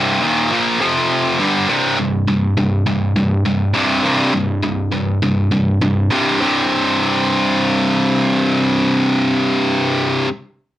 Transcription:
Already playing: C2 G2 C3
0.21 D#2 A#2 D#3
0.51 A#2 F3 A#3
0.80 F2 C3 F3
1.39 G2 D3 G3
1.69 C2 G2 C3
1.99 C2 G2
2.28 C2 G2
2.57 C2 G2
2.86 C2 G2
3.16 C2 G2
3.45 C2 G2
3.74 C2 G2 C3
4.03 C2 G2 C3
4.33 C2 G2
4.63 C2 G2
4.91 C2 G2
5.22 C2 G2
5.51 C2 G2
5.81 C2 G2
6.11 C2 G2 C3
6.39 C2 G2 C3

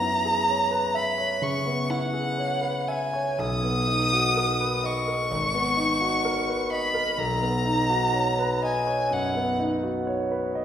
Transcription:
Already playing: F#2 B3 A#5
0.02 E4
0.25 G#4
0.49 C#5
0.71 B4
0.94 E5 B5
1.18 C#5
1.42 C#3 C#6
1.66 B3
1.90 E4 F#5
2.13 G#4
2.37 C#5
2.61 B4
2.88 E5 G#5
3.13 C#5
3.38 B1 D#6
3.63 B3
3.88 D#4
4.13 F#4
4.37 A#4
4.60 B4
4.84 D#5 C#6
5.08 A#4
5.31 G#1
5.54 B3
5.77 D#4
6.01 F#4
6.25 A#4
6.47 B4
6.71 D#5 B5
6.94 A#4
7.18 B1 A#5
7.41 B3
7.65 D#4
7.90 F#4
8.13 C#5
8.39 B4
8.62 D#5 G#5
8.87 C#5
9.11 F#2 F#5
9.35 B3
9.59 D#4
9.83 F#4
10.07 C#5
10.32 B4
10.55 D#5

